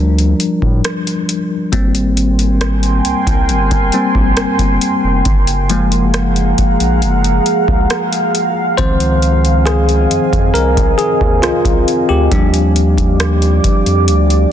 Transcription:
Already playing: sub bass D2, tine electric piano F3 G3 D4 A#4
0.18 closed hi-hat
0.40 closed hi-hat
0.62 sub bass A2, kick
0.84 cross-stick, closed hi-hat
1.07 closed hi-hat
1.29 closed hi-hat
1.72 sub bass G#1, tine electric piano G3 A#3 C4, ambient pad A#4 G5 G#5 C6, kick, closed hi-hat
1.95 closed hi-hat
2.17 closed hi-hat
2.39 closed hi-hat
2.61 cross-stick, closed hi-hat
2.83 closed hi-hat
3.05 sub bass C2, closed hi-hat
3.27 sub bass C2, kick, closed hi-hat
3.49 sub bass G1, closed hi-hat
3.71 kick, closed hi-hat
3.92 tine electric piano G3 A#3 C4, closed hi-hat
4.15 sub bass A#1, kick
4.37 sub bass G1, cross-stick, closed hi-hat
4.59 sub bass G1, kick, closed hi-hat
4.81 closed hi-hat
5.04 sub bass F1
5.25 sub bass F#1, ambient pad G#4 F5 F#5 A#5, kick, closed hi-hat
5.47 closed hi-hat
5.70 tine electric piano F3 G#3 A#3, closed hi-hat
5.92 closed hi-hat
6.14 cross-stick, closed hi-hat
6.36 closed hi-hat
6.58 sub bass A#1, kick, closed hi-hat
6.80 sub bass A#1, closed hi-hat
7.02 sub bass F#1, closed hi-hat
7.24 closed hi-hat
7.46 closed hi-hat
7.68 sub bass C#2, kick
7.90 cross-stick, closed hi-hat
8.12 closed hi-hat
8.35 closed hi-hat
8.77 sub bass C#2, tine electric piano D#3 F3 C4 C5, ambient pad C4 D#5 G#5, kick, closed hi-hat
9.00 closed hi-hat
9.22 closed hi-hat
9.45 closed hi-hat
9.66 tine electric piano G#4, cross-stick, closed hi-hat
9.89 closed hi-hat
10.11 sub bass F2, closed hi-hat
10.33 sub bass F2, kick, closed hi-hat
10.54 sub bass C2, tine electric piano A#4, closed hi-hat
10.77 kick, closed hi-hat
10.98 tine electric piano G#4, closed hi-hat
11.21 sub bass D#2, kick
11.42 sub bass C2, tine electric piano F4, cross-stick, closed hi-hat
11.65 sub bass C2, kick, closed hi-hat
11.88 closed hi-hat
12.09 sub bass D2, tine electric piano G4
12.31 sub bass D#2, tine electric piano F3 G3 D4, ambient pad G4 D5 D6, kick, closed hi-hat
12.54 closed hi-hat
12.76 closed hi-hat
12.98 kick, closed hi-hat
13.20 cross-stick, closed hi-hat
13.42 closed hi-hat
13.64 sub bass F2, kick, closed hi-hat
13.86 sub bass F2, closed hi-hat
14.08 sub bass D2, ambient pad G5, closed hi-hat
14.30 closed hi-hat

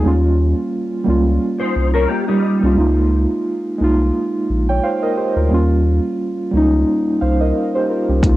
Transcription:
0.02 sub bass D#2, synth keys G3 A#3 C#4
0.07 synth keys F4
1.04 sub bass C#2, synth keys G3 A#3 C#4
1.10 synth keys F4
1.60 clean electric guitar D#4 C5
1.76 sub bass C2
1.94 clean electric guitar C#4 A#4
2.08 clean electric guitar A#3 G4
2.28 clean electric guitar G3 D#4
2.61 sub bass C2, synth keys G3 A#3 C#4
2.66 synth keys F4
2.75 sub bass C#2, synth keys G#3 A#3 D#4
2.80 synth keys F4
3.78 sub bass C2, synth keys G#3 A#3 D#4
3.84 synth keys F4
4.49 sub bass A#1
4.69 synth keys C#5 G5
4.83 synth keys C5 F5
5.02 synth keys A#4 D#5
5.17 synth keys G4 C5
5.36 sub bass D2, synth keys F4 A#4
5.48 sub bass D#2, synth keys G3 A#3 C#4
5.54 synth keys F4
6.51 sub bass C#2, synth keys G3 A#3
6.55 synth keys C#4 D#4
7.21 sub bass C2, synth keys C5 F5
7.40 synth keys A#4 D#5
7.75 synth keys G4 C5
7.89 synth keys F4 A#4
8.09 sub bass C2, synth keys C#4 G4
8.21 sub bass C#2, synth keys G#3 A#3 D#4, kick, closed hi-hat
8.27 synth keys F4

